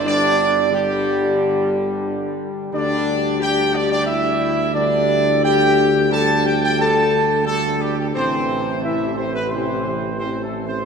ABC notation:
X:1
M:4/4
L:1/16
Q:1/4=89
K:Ddor
V:1 name="Trumpet section"
d4 G6 z6 | d4 g2 d d e4 d4 | g4 a2 g g a4 A2 G G | c4 e2 c B c4 (3c2 A2 c2 |]
V:2 name="French horn section"
D4 G,6 z6 | D4 G2 D D E4 D4 | G4 A2 G G A4 A,2 G, G, | C4 E2 C B, C4 (3C2 A,2 C2 |]
V:3 name="Trombone section" clef=bass
[D,G,]4 [D,G,]12 | [D,G,]4 [D,G,]8 [D,G,]4 | [D,G,]4 [D,G,]4 [D,G,]4 [D,G,]4 | [C,E,]4 [C,E,]4 [C,E,]4 [C,E,]4 |]
V:4 name="Tuba" clef=bass
G,,,12- G,,,2 z2 | D,,16- | D,,16 | A,,,16 |]